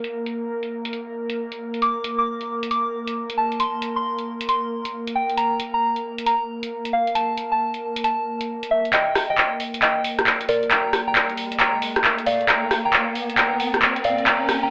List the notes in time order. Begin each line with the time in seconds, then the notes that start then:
Already playing: A#3 A#4
0.04 closed hi-hat
0.26 closed hi-hat
0.63 closed hi-hat
0.85 closed hi-hat
0.93 closed hi-hat
1.30 closed hi-hat
1.52 closed hi-hat
1.74 closed hi-hat
1.82 D6, closed hi-hat
2.04 closed hi-hat
2.18 D6
2.41 closed hi-hat
2.63 closed hi-hat
2.71 D6, closed hi-hat
3.07 closed hi-hat
3.30 closed hi-hat
3.38 A5
3.52 closed hi-hat
3.60 C6, closed hi-hat
3.82 closed hi-hat
3.96 C6
4.19 closed hi-hat
4.41 closed hi-hat
4.49 C6, closed hi-hat
4.85 closed hi-hat
5.07 closed hi-hat
5.15 G5
5.30 closed hi-hat
5.37 A#5, closed hi-hat
5.60 closed hi-hat
5.74 A#5
5.96 closed hi-hat
6.18 closed hi-hat
6.26 A#5, closed hi-hat
6.63 closed hi-hat
6.85 closed hi-hat
6.93 F5
7.07 closed hi-hat
7.15 A5, closed hi-hat
7.38 closed hi-hat
7.52 A5
7.74 closed hi-hat
7.96 closed hi-hat
8.04 A5, closed hi-hat
8.41 closed hi-hat
8.63 closed hi-hat
8.71 E5
8.85 closed hi-hat
8.93 A#3 A#4 D#5 G5, clap, closed hi-hat, riser
9.15 cross-stick, open hi-hat
9.30 D#5 G5
9.38 clap
9.60 open hi-hat
9.74 closed hi-hat
9.82 D#5 G5, clap, closed hi-hat
10.04 open hi-hat
10.19 cross-stick, closed hi-hat
10.27 clap
10.41 closed hi-hat
10.49 A#4 D5, open hi-hat
10.63 closed hi-hat
10.71 G5 A#5, clap, closed hi-hat
10.93 cross-stick, open hi-hat
11.07 G5 A#5
11.15 clap
11.29 closed hi-hat
11.37 open hi-hat
11.52 closed hi-hat
11.60 G5 A#5, clap, closed hi-hat
11.82 open hi-hat
11.96 cross-stick, closed hi-hat
12.04 clap
12.18 closed hi-hat
12.26 D5 F5, open hi-hat
12.41 closed hi-hat
12.48 G5 A#5, clap, closed hi-hat
12.71 cross-stick, open hi-hat
12.85 G5 A#5
12.93 clap
13.15 open hi-hat
13.30 closed hi-hat
13.38 G5 A#5, clap, closed hi-hat
13.60 open hi-hat
13.74 cross-stick, closed hi-hat
13.82 clap
13.96 closed hi-hat
14.04 D5 F5, open hi-hat
14.18 closed hi-hat
14.26 G5 A#5, clap, closed hi-hat
14.49 cross-stick, open hi-hat
14.63 G5 A#5